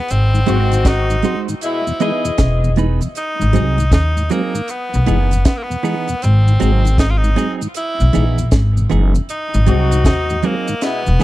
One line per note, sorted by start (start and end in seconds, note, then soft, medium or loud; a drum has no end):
0.00 0.12 B3 medium
0.08 0.46 G#1 loud
0.08 0.90 C4 loud
0.08 closed hi-hat medium
0.08 cabasa medium
0.34 0.40 G#2 medium
0.34 0.40 D#3 medium
0.34 cabasa medium
0.46 1.21 G#1 medium
0.46 1.20 D#3 loud
0.46 0.58 F#3 medium
0.46 0.70 G#3 medium
0.46 0.58 G#3 medium
0.46 0.59 C4 medium
0.46 1.20 C4 loud
0.46 0.71 D#4 medium
0.46 0.71 F#4 medium
0.46 1.20 F#4 loud
0.46 0.71 C5 medium
0.46 closed hi-hat medium
0.46 cabasa medium
0.72 0.78 G#2 medium
0.72 0.78 D#3 medium
0.72 closed hi-hat medium
0.72 cabasa medium
0.85 1.40 D#4 loud
0.85 kick loud
0.85 snare loud
0.85 closed hi-hat medium
0.85 cabasa medium
1.10 1.16 G#2 medium
1.10 1.16 D#3 medium
1.10 cabasa medium
1.22 1.35 F#3 medium
1.22 1.47 G#3 medium
1.22 1.35 G#3 medium
1.22 1.35 C4 medium
1.22 1.47 D#4 medium
1.22 1.48 F#4 medium
1.22 1.48 C5 medium
1.22 closed hi-hat medium
1.22 cabasa soft
1.48 1.55 G#2 medium
1.48 1.55 D#3 medium
1.48 closed hi-hat medium
1.48 cabasa medium
1.61 1.82 B2 medium
1.61 1.82 G#3 medium
1.61 1.82 E4 loud
1.61 closed hi-hat medium
1.61 cabasa medium
1.65 2.37 E4 medium
1.87 1.93 E2 medium
1.87 1.93 B2 medium
1.87 cabasa medium
2.00 2.12 E3 medium
2.00 2.73 E3 medium
2.00 2.12 G#3 medium
2.00 2.24 B3 medium
2.00 2.12 D#4 medium
2.00 2.24 D#4 medium
2.00 2.73 G#4 loud
2.00 2.24 G#4 medium
2.00 2.25 B4 medium
2.00 2.73 D#5 medium
2.00 closed hi-hat medium
2.00 cabasa medium
2.24 2.31 E2 medium
2.24 2.31 B2 medium
2.24 closed hi-hat medium
2.24 cabasa medium
2.38 2.98 E1 loud
2.38 kick loud
2.38 snare loud
2.38 closed hi-hat loud
2.38 cabasa medium
2.63 2.70 E2 medium
2.63 2.70 B2 medium
2.63 cabasa soft
2.76 2.88 E3 medium
2.76 2.88 G#3 medium
2.76 3.01 B3 medium
2.76 2.88 D#4 medium
2.76 3.01 D#4 medium
2.76 3.01 G#4 medium
2.76 3.00 B4 medium
2.76 closed hi-hat medium
2.76 cabasa soft
3.01 3.08 E2 medium
3.01 3.08 B2 medium
3.01 muted clean electric guitar stroke medium
3.01 closed hi-hat medium
3.01 cabasa medium
3.15 3.89 D#4 loud
3.15 closed hi-hat medium
3.15 cabasa medium
3.39 3.54 G#1 loud
3.39 3.46 G#2 medium
3.39 3.46 D#3 medium
3.39 cabasa medium
3.53 3.91 C2 loud
3.53 3.65 F#3 medium
3.53 3.77 F#3 loud
3.53 3.65 G#3 medium
3.53 3.65 C4 medium
3.53 3.77 C4 medium
3.53 3.78 D#4 medium
3.53 3.78 G#4 medium
3.53 closed hi-hat medium
3.53 cabasa medium
3.78 3.84 G#2 medium
3.78 3.85 D#3 medium
3.78 closed hi-hat medium
3.78 cabasa medium
3.92 4.28 D#2 loud
3.92 4.33 D#4 loud
3.92 kick loud
3.92 snare loud
3.92 closed hi-hat loud
3.92 cabasa medium
4.16 4.23 G#2 soft
4.16 4.23 D#3 medium
4.16 cabasa medium
4.29 4.42 F#3 medium
4.29 4.54 F#3 medium
4.29 4.42 G#3 medium
4.29 4.71 A#3 medium
4.29 4.42 C4 medium
4.29 4.54 C4 medium
4.29 4.54 D#4 loud
4.29 4.55 G#4 loud
4.29 closed hi-hat medium
4.29 cabasa medium
4.55 4.61 G#2 medium
4.55 4.61 D#3 medium
4.55 closed hi-hat medium
4.55 cabasa medium
4.68 5.46 B3 medium
4.68 closed hi-hat medium
4.68 cabasa medium
4.93 5.07 B1 loud
4.93 5.00 E2 medium
4.93 5.00 B2 medium
4.93 cabasa medium
5.06 5.44 F#1 medium
5.06 5.30 E3 medium
5.06 5.18 E3 medium
5.06 5.18 G#3 medium
5.06 5.30 B3 medium
5.06 5.19 D#4 loud
5.06 5.31 D#4 medium
5.06 5.31 G#4 medium
5.06 closed hi-hat medium
5.06 cabasa medium
5.31 5.38 E2 medium
5.31 5.38 B2 medium
5.31 closed hi-hat medium
5.31 cabasa medium
5.45 5.58 B3 medium
5.45 kick loud
5.45 snare loud
5.45 closed hi-hat medium
5.45 cabasa medium
5.57 5.65 A#3 medium
5.63 6.24 B3 medium
5.70 5.76 E2 medium
5.70 5.76 B2 medium
5.70 cabasa soft
5.83 6.07 E3 medium
5.83 5.95 E3 medium
5.83 5.95 G#3 medium
5.83 6.07 B3 medium
5.83 5.95 D#4 medium
5.83 6.07 D#4 medium
5.83 6.08 G#4 medium
5.83 open hi-hat soft
5.83 cabasa medium
6.08 6.15 E2 medium
6.08 6.15 B2 medium
6.08 closed hi-hat medium
6.08 cabasa medium
6.22 6.59 G#1 loud
6.22 6.99 C4 loud
6.22 closed hi-hat medium
6.22 cabasa medium
6.47 6.53 G#2 medium
6.47 6.53 D#3 medium
6.47 cabasa medium
6.60 7.34 G#1 medium
6.60 6.71 F#3 medium
6.60 6.84 F#3 loud
6.60 6.72 G#3 medium
6.60 6.84 C4 medium
6.60 6.72 C4 medium
6.60 6.84 D#4 medium
6.60 6.84 G#4 medium
6.60 closed hi-hat medium
6.60 cabasa medium
6.85 6.91 G#2 medium
6.85 6.91 D#3 medium
6.85 closed hi-hat medium
6.85 cabasa medium
6.98 7.12 D#4 loud
6.98 kick loud
6.98 snare loud
6.98 closed hi-hat medium
6.98 cabasa medium
7.10 7.19 F4 medium
7.17 7.52 D#4 loud
7.24 7.30 G#2 medium
7.24 7.30 D#3 medium
7.24 cabasa medium
7.36 7.60 F#3 medium
7.36 7.48 F#3 medium
7.36 7.48 G#3 medium
7.36 7.60 C4 medium
7.36 7.49 C4 medium
7.36 7.61 D#4 loud
7.36 7.61 G#4 loud
7.36 closed hi-hat medium
7.36 cabasa medium
7.61 7.68 G#2 medium
7.61 7.68 D#3 medium
7.61 closed hi-hat medium
7.61 cabasa medium
7.74 8.49 E4 loud
7.74 closed hi-hat loud
7.74 cabasa medium
8.00 8.14 B1 loud
8.00 8.06 E2 medium
8.00 8.06 B2 medium
8.00 cabasa medium
8.13 8.51 A#1 medium
8.13 8.25 E3 medium
8.13 8.37 E3 medium
8.13 8.25 G#3 medium
8.13 8.37 B3 medium
8.13 8.25 D#4 loud
8.13 8.38 D#4 medium
8.13 8.38 G#4 medium
8.13 closed hi-hat medium
8.13 cabasa medium
8.38 8.45 E2 medium
8.38 8.45 B2 medium
8.38 closed hi-hat medium
8.38 cabasa medium
8.51 8.88 G#1 medium
8.51 kick loud
8.51 snare medium
8.51 closed hi-hat medium
8.51 cabasa medium
8.76 8.83 E2 medium
8.76 8.83 B2 medium
8.76 cabasa soft
8.90 9.14 F#1 loud
8.90 9.13 E3 medium
8.90 9.02 E3 medium
8.90 9.02 G#3 medium
8.90 9.14 B3 medium
8.90 9.14 D#4 medium
8.90 9.02 D#4 medium
8.90 9.13 G#4 medium
8.90 closed hi-hat medium
8.90 cabasa soft
9.14 9.21 E2 medium
9.14 9.21 B2 medium
9.14 muted clean electric guitar stroke soft
9.14 closed hi-hat medium
9.14 cabasa medium
9.29 10.02 D#4 medium
9.29 closed hi-hat medium
9.29 cabasa medium
9.54 9.67 G#1 loud
9.54 9.60 G#2 medium
9.54 9.60 D#3 medium
9.54 cabasa medium
9.66 10.03 C2 medium
9.66 10.39 D#3 medium
9.66 9.90 F#3 medium
9.66 9.78 F#3 medium
9.66 9.79 G#3 medium
9.66 10.40 C4 medium
9.66 9.91 C4 loud
9.66 9.79 C4 medium
9.66 9.91 D#4 medium
9.66 10.40 F#4 loud
9.66 9.91 G#4 medium
9.66 closed hi-hat medium
9.66 cabasa medium
9.91 9.98 G#2 medium
9.91 9.98 D#3 medium
9.91 closed hi-hat medium
9.91 cabasa medium
10.05 10.41 D#2 medium
10.05 10.47 D#4 loud
10.05 kick loud
10.05 snare loud
10.05 closed hi-hat medium
10.05 cabasa medium
10.30 10.36 G#2 medium
10.30 10.36 D#3 medium
10.30 cabasa medium
10.42 10.67 F#3 medium
10.42 10.55 F#3 medium
10.42 10.55 G#3 medium
10.42 10.85 A#3 medium
10.42 10.67 C4 medium
10.42 10.55 C4 medium
10.42 10.67 D#4 medium
10.42 10.68 G#4 medium
10.42 closed hi-hat medium
10.42 cabasa soft
10.68 10.75 G#2 medium
10.68 10.75 D#3 medium
10.68 closed hi-hat medium
10.68 cabasa medium
10.81 11.01 B2 medium
10.81 11.01 G#3 medium
10.81 11.24 B3 loud
10.81 11.01 E4 medium
10.81 snare medium
10.81 closed hi-hat loud
10.81 cabasa medium
11.06 11.20 E1 loud
11.06 11.13 E2 medium
11.06 11.13 B2 medium
11.06 cabasa medium
11.19 11.24 E3 medium
11.19 11.24 G#3 medium
11.19 11.24 B3 medium
11.19 11.24 D#4 medium
11.19 11.24 G#4 medium
11.19 closed hi-hat medium